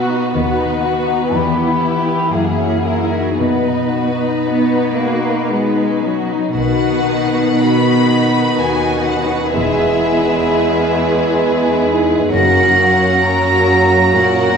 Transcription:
Already playing: B2 A#3 B3 F#4 B4
0.02 F#4
0.11 D#4
0.34 D#2 D#3 B3 B4 F#5
0.59 D#4
0.67 B3
0.83 F#4
1.01 F#4
1.10 D#4
1.35 E2 E3 G3 E4 G4 B5
1.59 B3
1.68 E4
1.84 E4
2.00 E4 G4
2.08 G4
2.33 F#2 A#3 G#4 E5
2.42 F#5
2.50 E5
2.60 C#4 F#5
2.68 A#3 E5
2.77 F#5
2.85 E4 A#4 E5
2.95 F#5
3.03 D#4 G#4 E5
3.10 F#4
3.38 B2 B3 D#4 B4 D#5
3.66 D#4
3.76 B3
3.94 F#4
4.11 D#4
4.19 D#4
4.46 B3 F#4
4.72 D#4
4.80 G#4
4.98 A#3 F#4
5.14 F#4
5.26 D#4
5.49 G#3 B3 D#4
5.79 D#4
5.85 C#4
6.04 F#3 F#4
6.20 D#4
6.32 D#4
6.54 B1 B2 D#3 B3 D#4 F#5 B6
6.58 F#4 B4
6.89 B3
7.26 D#4
7.61 B3 D#4 F#4 B4 B5
7.95 G#4
8.28 F#4
8.60 D#2 D#4 G#5
8.92 C#4
9.06 F#5
9.24 D#4
9.52 E1 E2 G#3 B3 E4 G#4 B4 E5
9.85 B3
10.16 E4
10.47 G#4
10.78 A#4
11.10 G#4
11.41 E4
11.72 D#4
12.03 E4
12.31 F#1 F#2 F#3 A#3 C#4 F#4 A#4 F#5 A#6
12.63 A#3
12.95 C#4
13.24 F#3 C#4 F#4 A#4 A#5
13.55 G#4
13.86 F#4
14.16 A#2 F#3 C#4 F#4 A#4 F#5
14.47 B3

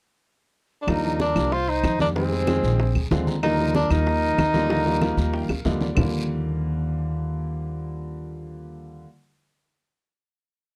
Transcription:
0.82 D4
0.87 D#2 F3 G3 A#3 D4 D#4 A#4, high bongo, high conga, long guiro, claves
1.04 F3 G3 A#3 D4, high conga
1.20 D4 A#4, high bongo, high conga, short guiro
1.36 C2 F3 G3 A#3 D4, short guiro, claves
1.52 F4 C5, high bongo, high conga, long guiro
1.68 D#4 C5, high conga
1.83 F2, high bongo, low bongo, high conga, short guiro, claves
1.99 D#3 G3 A#3 D4 A#4, high conga, short guiro
2.15 D#3 G3 G#3 C4 G#4, high bongo, high conga, long guiro
2.31 D#3 G3 G#3 C4, high bongo, high conga
2.47 D#3 F3 G#3 C4, high bongo, high conga, short guiro, claves
2.63 A#1, high conga, short guiro
2.79 high bongo, high conga, long guiro
2.95 D2, high bongo, high conga, claves
3.11 D#2 D3 F3 G#3 C4 F5, high bongo, low bongo, high conga, short guiro
3.27 A#5, high bongo, high conga, short guiro
3.43 D3 F3 G3 A#3 D#4 A#4, high bongo, long guiro, claves
3.59 D3 F3 G3 A#3, high conga
3.75 D4 A#4, high bongo, high conga, short guiro
3.90 D#2 D#3 F3 G3 A#3 D#4 A#4, high conga, short guiro, claves
4.06 high bongo, high conga, long guiro
4.22 high conga
4.38 D#2, high bongo, low bongo, high conga, short guiro, claves
4.54 D3 F3 G3 A#3, high conga, short guiro
4.69 D3 F3 G3 A#3, high bongo, long guiro
4.85 D3 F3 G3 A#3, high bongo, high conga
5.01 D#3 F3 G3 A#3, high bongo, high conga, short guiro, claves
5.17 D#2 A#5, high conga, short guiro
5.33 G5, high bongo, high conga, long guiro
5.42 F5
5.49 D2, high bongo, high conga, claves
5.65 D#2 D3 F3 G3 A#3 D#5, high conga, short guiro
5.81 D5, low bongo, high conga, short guiro
5.95 D#2 D3 F3 G3, low bongo, low conga, long guiro, claves
5.99 A#3

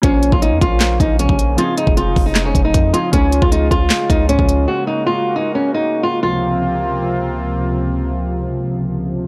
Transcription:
0.02 A#1 C#3 F3 A#3 C#4 F4 C5 C#5, kick, closed hi-hat
0.23 closed hi-hat
0.32 A#1 F4, kick
0.42 D#4, closed hi-hat
0.52 F2
0.61 A#1 F4, kick, closed hi-hat
0.80 snare, clap, closed hi-hat
1.00 A#1 D#4, kick, closed hi-hat
1.19 C#2 C3 F3 C#4, closed hi-hat
1.29 A#1, kick
1.39 closed hi-hat
1.57 F3 G#3 C4 D#4 F4 G#4, closed hi-hat
1.77 D#4, closed hi-hat
1.87 F1, kick
1.97 F4, closed hi-hat
2.16 F1, kick, open hi-hat
2.26 D#4
2.35 snare, clap, closed hi-hat
2.45 C#4
2.55 F1, kick, closed hi-hat
2.65 D#4
2.74 F2, kick, closed hi-hat
2.93 F3 C4 D#4 F4 G#4, closed hi-hat
3.12 C#2 C#3 G#3 C#4 F4 G#4, kick, closed hi-hat
3.32 closed hi-hat
3.42 C#2 F4, kick
3.52 D#4, closed hi-hat
3.71 C#2 F4, kick, closed hi-hat
3.90 snare, clap, closed hi-hat
4.10 C#2 D#4, kick, closed hi-hat
4.29 C#2 G#2 F3 C#4, closed hi-hat
4.39 C#2, kick
4.49 closed hi-hat
4.68 A#3 F#4
4.87 D#4
5.07 F4
5.36 D#4
5.55 C#4
5.74 D#4
6.03 F4
6.23 C#2 C3 F3 A#3 C4 F4

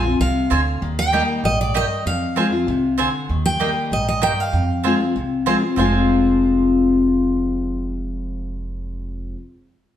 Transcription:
Already playing: A#1 F2 G#5
0.05 C4 F4
0.20 C2 C3 F5
0.50 D2 D3 C4 F4 C5 G#5
0.82 D#2 D#3
0.99 G5
1.13 G3 A#3 D#4 G4 D#5 G5
1.44 A#1 G#2 D#5
1.61 D5
1.74 G2 A#3 G4 D#5 G5
2.06 F2 F5
2.36 F3 G#3 C4 F4 C5 G#5
2.52 C4 F4
2.67 C2 C3
2.98 D3 C4 F4 C5 G#5
3.29 D#2 D#3
3.46 G5
3.60 G3 A#3 D#4 G4 D#5 G5
3.91 A#1 G#2 D#5
4.08 D#5
4.22 G2 A#3 G4 D#5 G5
4.40 F5
4.53 F2
4.83 F3 G#3 C4 F4 C5 G#5
5.00 C4 F4
5.16 C2 C3
5.46 F3 G#3 C4 F4 C5 G#5
5.62 C4 F4
5.76 F1 F2 C3 F3 G#3 C4 F4 C5 G#5

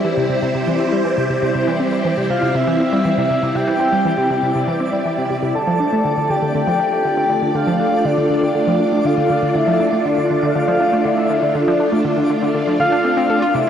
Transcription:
Already playing: G3 C4 E4 C5 D5
0.05 E3
0.17 C3
0.30 C3
0.42 C3
0.55 C3
0.67 E3
0.80 C4
0.92 G3
1.05 E3
1.18 C3
1.30 C3
1.42 C3
1.55 C3
1.68 E3
1.80 C4
1.92 G3
2.05 E3
2.17 C3
2.30 C3 F5
2.42 C3
2.55 C3 E5
2.67 E3
2.80 C4
2.93 G3
3.05 E3
3.14 C3 D5
3.30 C3
3.43 C3
3.55 C3 G5
3.67 E3
3.80 C4
3.92 G3
4.05 E3
4.18 C3
4.30 C3
4.43 C3
4.55 C3
4.68 E3
4.80 C4
4.93 G3
5.05 E3
5.18 C3
5.30 C3
5.43 C3
5.55 D3 A3 D5 A5
5.67 F3
5.80 D4 F4
5.93 A3
6.00 D4
6.05 D3
6.17 D3
6.30 D3 G5
6.42 D3
6.55 D3
6.67 F3
6.80 D4
6.92 A3
7.05 D3
7.17 D3
7.30 D3
7.42 D3
7.55 D3 F5
7.67 F3
7.80 D4
7.92 A3
8.05 D3 D5
8.18 D3
8.30 D3
8.43 D3
8.55 D3
8.67 F3
8.80 D4
8.92 A3
9.05 D3 F5
9.18 D3
9.30 D3
9.43 D3
9.55 D3 E5
9.67 F3
9.80 D4
9.93 A3
10.05 D3 D5
10.18 D3
10.30 D3
10.43 D3
10.55 D3 F5
10.68 F3
10.80 D4
10.93 A3
11.05 D3 E5
11.18 D3
11.30 D3
11.42 D3
11.55 D3 D5
11.68 F3
11.80 D4
11.92 A3
12.05 D3
12.17 D3
12.30 D3
12.42 D3
12.55 D3
12.67 F3
12.80 D3 F5
12.92 D4
13.05 C4
13.17 C4
13.30 A4
13.42 F4
13.54 C3 G3 E5

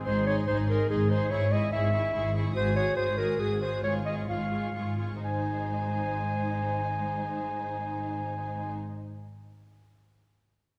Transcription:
0.05 G#1 G#2 D#4 G#4 C5 C6
0.26 D#4 G#4 C#5 C6
0.47 G#1 G#2 D#4 G#4 C5 C6
0.68 D#4 G#4 A#4 C6
0.89 G#1 G#2 D#4 G#4 C6
1.10 D#4 G#4 C5 C6
1.31 G#1 G#2 E4 G#4 C#5 C#6
1.52 E4 G#4 D#5 C#6
1.72 G#1 G#2 E4 G#4 E5 C#6
1.93 E4 G#4 C#6
2.13 G#1 G#2 E4 G#4 C#6
2.35 E4 G#4 C#6
2.55 G#1 G#2 F#4 G#4 C5 D#6
2.75 F#4 G#4 C#5 D#6
2.97 G#1 G#2 F#4 G#4 C5 D#6
3.18 F#4 G#4 A#4 D#6
3.39 G#1 G#2 F#4 G#4 D#6
3.61 F#4 G#4 C5 D#6
3.83 G#1 G#2 F4 G#4 C#5 C#6
4.05 F4 G#4 D#5 C#6
4.28 G#1 G#2 F4 G#4 F5 C#6
4.51 F4 G#4 C#6
4.75 G#1 G#2 F4 G#4 C#6
4.99 F4 G#4 C#6
5.24 G#1 G#2 D#4 C5 G#5

